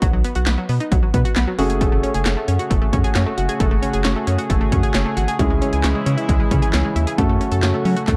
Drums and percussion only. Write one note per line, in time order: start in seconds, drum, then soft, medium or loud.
0.02 kick loud
0.02 closed hi-hat medium
0.24 closed hi-hat medium
0.35 closed hi-hat medium
0.47 snare loud
0.47 clap loud
0.47 closed hi-hat medium
0.69 open hi-hat medium
0.80 closed hi-hat soft
0.92 kick loud
0.92 closed hi-hat medium
1.14 kick medium
1.14 closed hi-hat medium
1.25 closed hi-hat medium
1.36 snare loud
1.36 clap loud
1.36 closed hi-hat medium
1.59 open hi-hat medium
1.70 closed hi-hat medium
1.81 kick loud
1.81 closed hi-hat medium
2.04 closed hi-hat medium
2.14 closed hi-hat medium
2.26 snare loud
2.26 clap loud
2.26 closed hi-hat medium
2.48 closed hi-hat medium
2.59 closed hi-hat soft
2.71 kick loud
2.71 closed hi-hat medium
2.93 kick medium
2.93 closed hi-hat medium
3.04 closed hi-hat medium
3.15 snare loud
3.15 clap loud
3.15 closed hi-hat medium
3.38 closed hi-hat medium
3.49 closed hi-hat medium
3.60 kick loud
3.60 closed hi-hat medium
3.83 closed hi-hat medium
3.93 closed hi-hat medium
4.05 snare loud
4.05 clap loud
4.05 closed hi-hat medium
4.27 closed hi-hat medium
4.39 closed hi-hat soft
4.50 kick loud
4.50 closed hi-hat medium
4.72 kick medium
4.72 closed hi-hat medium
4.83 closed hi-hat medium
4.94 snare loud
4.94 clap loud
4.94 closed hi-hat medium
5.17 closed hi-hat medium
5.28 closed hi-hat medium
5.39 kick loud
5.39 closed hi-hat medium
5.62 closed hi-hat medium
5.73 closed hi-hat medium
5.84 snare loud
5.84 clap loud
5.84 closed hi-hat medium
6.06 closed hi-hat medium
6.18 closed hi-hat soft
6.29 kick loud
6.29 closed hi-hat medium
6.51 kick medium
6.51 closed hi-hat medium
6.63 closed hi-hat medium
6.74 snare loud
6.74 clap loud
6.74 closed hi-hat medium
6.96 closed hi-hat medium
7.07 closed hi-hat medium
7.18 kick loud
7.18 closed hi-hat medium
7.41 closed hi-hat medium
7.52 closed hi-hat medium
7.63 snare loud
7.63 clap loud
7.63 closed hi-hat medium
7.85 open hi-hat medium
7.97 closed hi-hat soft
8.08 kick loud
8.08 clap medium
8.08 closed hi-hat medium